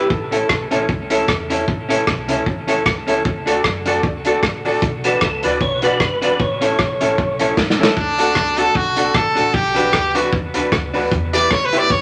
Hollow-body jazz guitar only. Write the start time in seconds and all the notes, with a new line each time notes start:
0.31 C#4 E4 A4
0.71 C#4 E4 A4
1.10 C#4 E4 A4
1.50 C#4 E4 A4
1.89 C#4 E4 A4
2.28 C#4 E4 A4
2.67 C#4 E4 A4
3.07 C#4 E4 A4
3.46 D4 F#4 A4
3.86 D4 F#4 A4
4.26 D4 F#4 A4
4.66 D4 F#4 A4
5.05 D4 F#4 B4
5.44 D4 F#4 B4
5.83 D4 F#4 B4
6.22 D4 F#4 B4
6.61 C#4 E4 A4
7.01 C#4 E4 A4
7.40 C#4 E4 A4
7.79 C#4 E4 A4
8.19 D4 F#4 A4
8.58 D4 F#4 A4
8.97 D4 F#4 A4
9.35 D4 F#4 A4
9.74 D4 F#4 B4
10.15 D4 F#4 B4
10.55 D4 F#4 B4
10.94 D4 F#4 B4
11.33 E4 G4 B4
11.73 E4 G4 B4